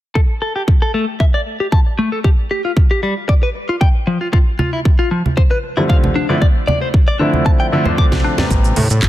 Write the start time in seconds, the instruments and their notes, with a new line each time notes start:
0.15 clean electric guitar A4, kick
0.42 clean electric guitar A4
0.56 clean electric guitar G4
0.68 kick
0.82 clean electric guitar A4
0.94 clean electric guitar A3
1.20 clean electric guitar E5, kick
1.34 clean electric guitar D5
1.60 clean electric guitar G4
1.72 clean electric guitar A5, kick
1.98 clean electric guitar A3
2.12 clean electric guitar A4
2.24 clean electric guitar G4, kick
2.51 clean electric guitar G4
2.65 clean electric guitar F4
2.77 kick
2.91 clean electric guitar G4
3.03 clean electric guitar G3
3.29 clean electric guitar D5, kick
3.43 clean electric guitar B4
3.69 clean electric guitar F4
3.81 clean electric guitar G5, kick
4.07 clean electric guitar F3
4.21 clean electric guitar F4
4.33 clean electric guitar F4, kick
4.59 clean electric guitar F4, high conga
4.73 clean electric guitar E4
4.85 kick
4.99 clean electric guitar F4
5.11 clean electric guitar F3
5.26 high conga
5.37 clean electric guitar C5, kick
5.51 clean electric guitar B4
5.77 grand piano D3 F3 G3 A3 C4, clean electric guitar E4
5.89 clean electric guitar F5, kick
6.04 high conga
6.15 clean electric guitar D4
6.29 grand piano D3 F3 A3 C4 E4, clean electric guitar D5
6.41 clean electric guitar D5, kick
6.67 clean electric guitar D5, high conga
6.81 clean electric guitar C5
6.94 kick
7.08 clean electric guitar D5
7.19 grand piano D3 F3 A3 C4 E4, clean electric guitar D4
7.34 high conga
7.46 clean electric guitar A5, kick
7.60 clean electric guitar G5
7.72 grand piano D3 F3 A3 C4 E4
7.85 grand piano D3 F3 A3 C4 D4, clean electric guitar C5, low conga
7.98 clean electric guitar D6, kick
8.12 kick, snare, high conga
8.24 clean electric guitar D4
8.38 grand piano C3 G3 A3 B3 G4, clean electric guitar D5, snare, low conga
8.50 analog synth bass A1, kick, closed hi-hat, shaker
8.64 closed hi-hat, shaker
8.76 analog synth bass A2, open hi-hat, high conga
8.90 analog synth bass A2, closed hi-hat, shaker
9.02 analog synth bass A1, kick, clap, closed hi-hat, shaker